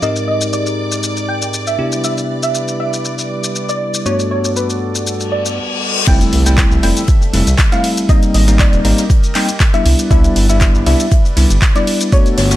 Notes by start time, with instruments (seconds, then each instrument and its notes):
Already playing: string machine D5 D6
0.02 tine electric piano G#2 C4 D#4 G4 A#4, analog synth pad G#3 D#4 G4 A#4, synth pluck D#5, shaker
0.16 shaker
0.28 synth pluck D#5
0.41 shaker
0.53 synth pluck D5, shaker
0.66 shaker
0.92 shaker
1.03 shaker
1.17 shaker
1.29 synth pluck G5
1.42 shaker
1.54 shaker
1.67 synth pluck E5, shaker
1.79 tine electric piano C3 B3 D4 E4 G4, analog synth pad G3 E4 B4 D5
1.92 shaker
2.04 synth pluck E5, shaker
2.18 shaker
2.43 synth pluck E5, shaker
2.55 shaker
2.68 shaker
2.80 synth pluck E5
2.93 shaker
3.05 shaker
3.19 shaker
3.44 shaker
3.56 shaker
3.69 synth pluck D5, shaker
3.94 shaker
4.06 tine electric piano G2 A3 B3 D4 F#4, analog synth pad B3 F#4 A4, synth pluck C#5, shaker
4.20 shaker
4.31 synth pluck C#5
4.45 shaker
4.56 synth pluck B4, shaker
4.70 shaker
4.95 shaker
5.07 reverse cymbal, shaker
5.20 shaker
5.32 synth pluck D5
5.46 shaker
6.07 analog synth bass F1, analog synth pad F3 G3 A4 E5, tine electric piano G3 A3 C4 E4, synth pluck G5, kick, closed hi-hat, crash, ride, impact, shaker
6.21 closed hi-hat, shaker
6.33 analog synth bass C2, closed hi-hat, open hi-hat, ride
6.46 tine electric piano G3 A3 C4 E4, synth pluck G5, closed hi-hat, shaker
6.57 kick, snare, clap, closed hi-hat, ride, shaker
6.71 analog synth bass C2, shaker
6.83 analog synth bass F1, tine electric piano G3 A3 C4 E4, synth pluck G5, open hi-hat, ride
6.97 closed hi-hat, shaker
7.07 kick, closed hi-hat, ride, shaker
7.22 closed hi-hat, shaker
7.33 analog synth bass F1, tine electric piano G3 A3 C4 E4, snare, closed hi-hat, open hi-hat, ride
7.47 analog synth bass C2, closed hi-hat, shaker
7.58 kick, snare, clap, closed hi-hat, ride, shaker
7.72 tine electric piano G3 A3 C4 E4, synth pluck F5, snare, closed hi-hat, shaker
7.84 closed hi-hat, open hi-hat, ride
7.97 closed hi-hat, shaker
8.09 tine electric piano G3 A#3 C4 D#4, analog synth pad G4 A#4 D#5, synth pluck D#5, kick, closed hi-hat, ride, shaker
8.23 closed hi-hat, shaker
8.34 analog synth bass G#1, synth pluck D#5, closed hi-hat, open hi-hat, ride
8.48 tine electric piano G3 A#3 C4 D#4, closed hi-hat, shaker
8.59 synth pluck D5, kick, snare, clap, closed hi-hat, ride, shaker
8.73 analog synth bass D#1, closed hi-hat, shaker
8.85 analog synth bass G#1, tine electric piano G3 A#3 C4 D#4, closed hi-hat, open hi-hat, ride
8.98 snare, closed hi-hat, shaker
9.10 kick, closed hi-hat, ride, shaker
9.24 closed hi-hat, shaker
9.35 tine electric piano G3 A#3 C4 D#4, synth pluck G5, clap, closed hi-hat, open hi-hat, ride
9.49 closed hi-hat, shaker
9.60 kick, snare, clap, closed hi-hat, ride, shaker
9.74 tine electric piano G3 B3 D4 E4, synth pluck E5, closed hi-hat, shaker
9.85 analog synth bass C2, analog synth pad G3 E4 B4 D5, closed hi-hat, open hi-hat, ride
9.99 closed hi-hat, shaker
10.11 analog synth bass C2, tine electric piano G3 B3 D4 E4, synth pluck E5, kick, closed hi-hat, ride, shaker
10.24 closed hi-hat, shaker
10.36 analog synth bass G1, closed hi-hat, open hi-hat, ride
10.49 tine electric piano G3 B3 D4 E4, synth pluck E5, closed hi-hat, shaker
10.60 kick, snare, clap, closed hi-hat, ride, shaker
10.75 analog synth bass G1, shaker
10.86 analog synth bass C2, tine electric piano G3 B3 D4 E4, synth pluck E5, open hi-hat, ride
11.00 closed hi-hat, shaker
11.11 kick, closed hi-hat, ride, shaker
11.25 closed hi-hat, shaker
11.37 analog synth bass C2, tine electric piano G3 B3 D4 E4, snare, closed hi-hat, open hi-hat, ride
11.50 analog synth bass G1, closed hi-hat, shaker
11.62 kick, snare, clap, closed hi-hat, ride, shaker
11.75 tine electric piano G3 B3 D4 E4, synth pluck D5, snare, closed hi-hat, shaker
11.87 closed hi-hat, open hi-hat, ride
12.01 closed hi-hat, shaker
12.12 analog synth pad G3 B3 F#4 A4, tine electric piano A3 B3 D4 F#4, synth pluck C#5, kick, closed hi-hat, ride, shaker
12.26 closed hi-hat, shaker
12.38 analog synth bass G1, synth pluck C#5, snare, closed hi-hat, open hi-hat, ride
12.51 tine electric piano A3 B3 D4 F#4, snare, closed hi-hat, shaker